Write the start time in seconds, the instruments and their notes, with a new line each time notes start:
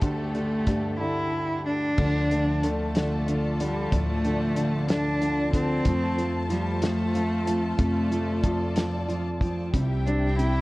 Already playing: grand piano G2 D3, string section D3 G3 A3 G4 A4
0.02 grand piano D2, cello A3, kick, closed hi-hat
0.35 grand piano D3, closed hi-hat
0.67 grand piano G2, kick, snare, closed hi-hat
1.00 grand piano D3, cello E4
1.65 cello D4
1.97 upright bass D2, grand piano D3, steel-string acoustic guitar F3, string section F4 A4 D5 A5, kick, crash
2.31 grand piano D3, steel-string acoustic guitar A3, closed hi-hat
2.63 grand piano D3, cello A3, steel-string acoustic guitar F4, closed hi-hat
2.95 grand piano D3, steel-string acoustic guitar D4, snare, closed hi-hat
3.28 grand piano D3, steel-string acoustic guitar F4, closed hi-hat
3.60 grand piano D3, cello G3, steel-string acoustic guitar D4, closed hi-hat
3.92 upright bass D2, grand piano A2, steel-string acoustic guitar F3, cello A3, kick, closed hi-hat
4.25 grand piano D3, steel-string acoustic guitar A3, closed hi-hat
4.56 grand piano D3, steel-string acoustic guitar F4, closed hi-hat
4.89 grand piano D3, cello D4, steel-string acoustic guitar D4, snare, closed hi-hat
5.21 grand piano D3, steel-string acoustic guitar F4, closed hi-hat
5.53 grand piano D3, cello C4, steel-string acoustic guitar D4, kick, closed hi-hat
5.85 upright bass F2, grand piano F3, steel-string acoustic guitar A3, string section F4 A4 C5, kick, closed hi-hat
6.17 grand piano F3, steel-string acoustic guitar A3, closed hi-hat
6.50 grand piano F3, cello G3, steel-string acoustic guitar F4, snare, closed hi-hat
6.82 grand piano F3, cello A3, steel-string acoustic guitar C4, snare, closed hi-hat
7.14 grand piano F3, steel-string acoustic guitar F4, closed hi-hat
7.46 grand piano F3, steel-string acoustic guitar C4, closed hi-hat
7.79 upright bass F2, grand piano C3, steel-string acoustic guitar A3, cello A3, string section D5, kick, closed hi-hat
8.11 grand piano F3, steel-string acoustic guitar A3, closed hi-hat
8.43 grand piano F3, steel-string acoustic guitar F4, kick, closed hi-hat
8.76 grand piano F3, steel-string acoustic guitar C4, snare, closed hi-hat
9.08 grand piano F3, steel-string acoustic guitar F4, closed hi-hat
9.41 grand piano F3, steel-string acoustic guitar C4, kick, closed hi-hat
9.74 upright bass C2, grand piano C3, steel-string acoustic guitar G3, string section E4 G4 E5 G5, kick, closed hi-hat
10.06 grand piano G3, steel-string acoustic guitar C4, cello D4, closed hi-hat
10.38 grand piano C3, cello E4, steel-string acoustic guitar G4, closed hi-hat